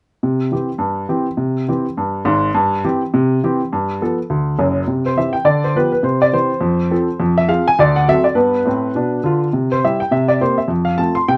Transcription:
0.23 C3
0.52 E3 C4 G4
0.78 G2
1.09 E3 C4 G4
1.37 C3
1.68 E3 C4 G4
1.97 G2
2.25 G#1 G#2
2.54 G2
2.84 E3 C4 G4
3.14 C3
3.44 E3 C4 G4
3.73 G2
4.01 F3 B3 A4
4.30 D2
4.59 F#1 F#2
4.88 C3
5.06 C5
5.17 E3 C4 G4 E5
5.33 G5
5.45 D3 D5
5.64 C5
5.75 F3 B3 G4 B4
5.92 B4
6.03 C3 C5
6.22 D5
6.33 E3 C4 G4 C5
6.61 F2
6.91 F3 C4 A4
7.20 F2
7.38 E5
7.48 F3 C4 G#4 F5
7.68 G#5
7.79 D2 D5
7.96 F#5
8.08 F#3 C4 A4 E5
8.24 D5
8.35 G2 B3 B4
8.65 A2 C4
8.95 B2 D4
9.24 D3 F4
9.53 C3
9.72 C5
9.84 G3 E4 G4 E5
10.00 G5
10.11 C3 E5
10.28 D5
10.41 A#3 C4 G4 C5
10.58 E5
10.68 F2
10.85 F5
10.98 A3 C4 F4 A5
11.15 C6
11.28 C3 G5

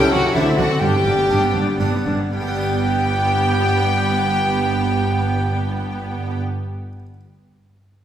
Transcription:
Already playing: C#3 A#3 C#4 E4 G4 G5
0.02 E4
0.13 C#2 C#3 C#4 F#4 F#5
0.24 E4
0.35 D2 D3 A3 C4 D4 E4 E5
0.47 C4
0.58 D2 D3 D4 F#4 F#5
0.71 C4
0.81 G1 G2 D4 G4 G5
0.94 B3
1.05 G1 G2 D4
1.18 B3
1.29 G1 G2 B3 D4
1.42 B3
1.54 G1 G2 D4
1.68 B3
1.79 G1 G2 B3 D4
1.93 B3
2.06 G1 G2 D4
2.20 B3
2.33 G1 G2 B3 G4 G5
2.40 G3
2.47 B3
2.55 D4
2.62 B4

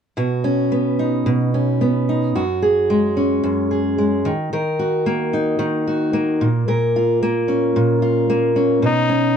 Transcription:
0.17 B2 F#4
0.44 C#4
0.72 B3
0.99 D#4
1.26 B2
1.54 C#4
1.81 B3
2.09 D#4
2.35 F#2 F#4
2.62 G#4
2.90 G#3
3.17 C#4
3.44 F#2
3.71 G#4
3.98 G#3
4.25 D#3
4.53 D#3 A#4
4.79 F#4
5.06 A#3
5.33 D#4
5.59 D#3
5.87 F#4
6.13 A#3
6.41 A#2
6.68 A#2 A#4
6.96 F4
7.23 A#3
7.48 C#4
7.76 A#2
8.02 F4
8.30 A#3
8.56 C#4
8.82 B2 D#4
9.09 C#4

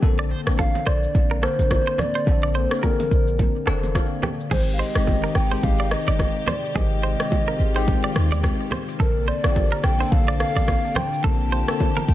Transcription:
0.01 A#1 D3 A#3 C4 A4, kick, low conga, shaker
0.19 D5
0.30 C5, shaker
0.45 A1 D3 A#3 C4 D4, cross-stick, shaker
0.58 A4 F5, kick, high bongo, low bongo, shaker
0.75 low bongo
0.86 A#1 C5 D5, cross-stick, shaker
1.03 shaker
1.14 A#1, kick, high bongo, low conga, shaker
1.31 A#4
1.41 D3 A#3 C4 A4 A#4 C5, cross-stick, shaker
1.59 A1, low bongo, shaker
1.71 C5, kick, cross-stick, high bongo, shaker
1.87 C5
1.98 D5, cross-stick, low bongo, low conga, shaker
2.15 C5, shaker
2.26 A#1 D3 A#3 C4 A4, kick, low conga, shaker
2.43 D5
2.55 C5, shaker
2.70 D3 A#3 C4 G#4, cross-stick, shaker
2.79 A#4, shaker
2.83 A#4, kick, high bongo, low bongo
3.00 low bongo
3.11 A#1, kick, shaker
3.27 shaker
3.39 kick, high bongo, low conga, shaker
3.66 F1 D3 A#3 C4 D4 A4 D5, cross-stick, shaker
3.83 low bongo, shaker
3.95 F5, kick, cross-stick, high bongo, shaker
4.22 G4, cross-stick, low bongo, low conga, shaker
4.40 shaker
4.50 G#1 C3 D#3 G#3 C4 D#4 G4 G#4 C5, kick, crash, low conga, shaker
4.74 F5
4.79 C5 D#5, shaker
4.94 G1 D#3 G#3 C4 G4, cross-stick, shaker
5.06 kick, high bongo, low bongo, shaker
5.24 A#4
5.35 G#1 G5, cross-stick, shaker
5.50 D#3 G#3 C4 G4 C5, shaker
5.63 G#1 F5, kick, low conga, shaker
5.80 D5
5.91 D#5, cross-stick, shaker
6.07 G1 D5, low bongo, shaker
6.19 kick, cross-stick, high bongo, shaker
6.47 C5 D5, cross-stick, low bongo, low conga, shaker
6.65 shaker
6.74 G#1 D#3 G#3 C4 F4 G4 G#4 D#5, kick, low conga, shaker
7.03 C5, shaker
7.19 D#3 G#3 C4 G4, cross-stick, shaker
7.31 kick, high bongo, low bongo, shaker
7.48 A#4
7.59 G#1, shaker
7.74 D#3 G#3 C4 G4 C5, shaker
7.87 kick, low conga, shaker
8.04 D5
8.15 D#2, cross-stick, shaker
8.32 D5, low bongo, shaker
8.43 kick, cross-stick, high bongo, shaker
8.71 C5, cross-stick, low bongo, low conga, shaker
8.89 shaker
8.99 A#1 D3 A#3 C4 D4 A4 A#4, kick, low conga, shaker
9.27 C5 D5, shaker
9.43 A1 D3 A#3 C4 F4, cross-stick, shaker
9.52 G4, shaker
9.56 kick, high bongo, low bongo
9.72 A#4
9.84 A#1 G5, cross-stick, shaker
9.99 D3 A#3 C4 A4 C5, shaker
10.11 A#1 F5, kick, low conga, shaker
10.28 D5
10.40 F5, cross-stick, shaker
10.56 A1 D5, low bongo, shaker
10.68 kick, cross-stick, high bongo, shaker
10.95 C5 G5, cross-stick, low bongo, low conga, shaker
11.13 shaker
11.23 A#1 D3 A#3 C4 F4 G4 A4 A5, kick, low conga, shaker
11.52 C5, shaker
11.67 D3 A#3 C4 A4, cross-stick, shaker
11.79 kick, high bongo, low bongo, shaker
11.97 A#4, low bongo
12.08 A#1 G5, kick, shaker

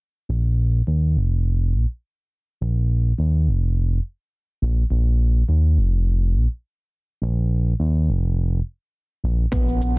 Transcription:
0.29 A#1
0.87 D#2
1.16 F1
1.74 A#1
2.61 A#1
3.18 D#2
3.47 F1
4.62 A#1
4.90 A#1
5.49 D#2
5.77 F1
6.35 A#1
7.22 A#1
7.80 D#2
8.08 F1
9.24 A#1
9.52 A#1 B3, kick, cabasa
9.69 cabasa
9.82 cabasa

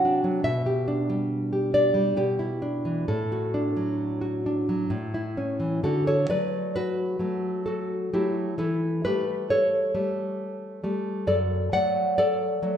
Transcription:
Already playing: C3 F#3 F#4 F#5
0.05 D4
0.24 F#3
0.44 B2 E5
0.66 G4
0.88 D4
1.10 G3
1.53 G4
1.74 D4 D5
1.94 G3
2.17 B2 G4
2.39 E4
2.62 D4
2.85 E3
3.08 A2 A4
3.32 F#4
3.54 D4
3.77 F#3
4.21 F#4
4.46 D4
4.69 F#3
4.90 A2
5.14 E4
5.37 C#4
5.60 E3
5.84 D3 F#4 A4
6.07 A4 C#5
6.29 F#3 A3 B4 D5
6.76 F#4 B4
7.19 F#3 A3
7.66 F#4 A4
8.13 F#3 A3 E4 G4
8.58 E3 E4 A4
9.05 G3 A3 G4 B4
9.50 A4 C#5
9.95 G3 A3
10.84 G3 A3
11.27 F#2 A4 D5
11.73 F#3 A3 D5 F#5
12.18 A4 D5
12.63 F#3 A3

